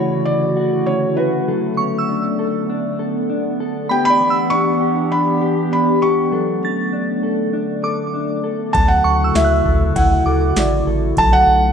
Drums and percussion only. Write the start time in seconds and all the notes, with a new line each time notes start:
8.75 kick, ride
9.35 snare, ride, tambourine
9.66 kick
9.96 kick, ride
10.56 snare, ride, tambourine
11.17 kick, ride